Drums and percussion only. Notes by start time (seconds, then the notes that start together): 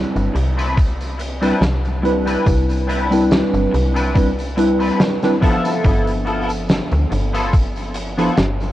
0.16 closed hi-hat, tambourine
0.36 closed hi-hat
0.59 closed hi-hat, tambourine
0.77 kick, closed hi-hat, tambourine
1.01 closed hi-hat, tambourine
1.20 closed hi-hat
1.43 closed hi-hat, tambourine
1.62 snare, closed hi-hat, tambourine
1.85 closed hi-hat, tambourine
2.05 closed hi-hat
2.27 closed hi-hat, tambourine
2.46 kick, closed hi-hat, tambourine
2.69 closed hi-hat, tambourine
2.89 closed hi-hat
3.12 closed hi-hat, tambourine
3.31 snare, closed hi-hat, tambourine
3.54 closed hi-hat, tambourine
3.74 closed hi-hat
3.96 closed hi-hat, tambourine
4.15 kick, closed hi-hat, tambourine
4.39 closed hi-hat, tambourine
4.58 closed hi-hat
4.80 closed hi-hat, tambourine
5.00 snare, closed hi-hat, tambourine
5.22 snare, closed hi-hat, tambourine
5.42 kick, closed hi-hat
5.65 closed hi-hat, tambourine
5.85 kick, closed hi-hat, tambourine
6.07 closed hi-hat, tambourine
6.27 closed hi-hat
6.49 closed hi-hat, tambourine
6.69 snare, closed hi-hat, tambourine
6.92 closed hi-hat, tambourine
7.12 closed hi-hat
7.35 closed hi-hat, tambourine
7.53 kick, closed hi-hat, tambourine
7.76 closed hi-hat, tambourine
7.94 closed hi-hat
8.19 closed hi-hat, tambourine
8.37 snare, closed hi-hat, tambourine
8.61 closed hi-hat, tambourine